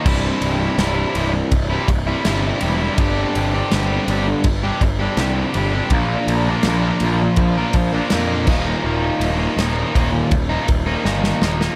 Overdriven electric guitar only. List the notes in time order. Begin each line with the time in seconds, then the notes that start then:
0.05 C2 G2 C3 G3 E4
0.59 C3 G3 E4
0.78 C2 G2 C3 G3 E4
1.15 G2 C3 G3 E4
1.33 muted overdriven electric guitar stroke
1.70 C3 G3 E4
1.89 muted overdriven electric guitar stroke
2.07 C3 G3 E4
2.25 C2 G2 C3 G3 E4
2.62 G2 C3 G3 E4
2.81 C3 G3 E4
2.99 G2 D3 G3 C4 D4 G4
3.54 G3 C4 D4 G4
3.73 G2 D3 G3 C4 D4 G4
4.09 G3 C4 D4 G4
4.28 muted overdriven electric guitar stroke
4.63 G3 C4 D4 G4
4.82 muted overdriven electric guitar stroke
4.99 G3 C4 D4 G4
5.19 G2 D3 G3 C4 D4 G4
5.55 G3 C4 D4 G4
5.74 G3 C4 D4 G4
5.93 A#2 F3 A#3 D4 F4 A#4
6.48 A#3 D4 F4 A#4
6.68 A#2 F3 A#3 D4 F4 A#4
7.04 A#3 D4 F4 A#4
7.22 muted overdriven electric guitar stroke
7.58 A#3 D4 F4 A#4
7.75 muted overdriven electric guitar stroke
7.93 A#3 D4 F4 A#4
8.11 A#2 F3 A#3 D4 F4 A#4
8.49 D#2 A#2 D#3 F3 A#3 D#4
8.66 D#3 F3 A#3 D#4
8.84 D#2 A#2 D#3 F3 A#3 D#4
9.39 D#3 F3 A#3 D#4
9.57 D#2 A#2 D#3 F3 A#3 D#4
9.94 D#3 F3 A#3 D#4
10.12 muted overdriven electric guitar stroke
10.49 D#3 F3 A#3 D#4
10.68 muted overdriven electric guitar stroke
10.87 D#3 F3 A#3 D#4
11.04 D#2 A#2 D#3 F3 A#3 D#4
11.42 D#3 F3 A#3 D#4
11.60 D#3 F3 A#3 D#4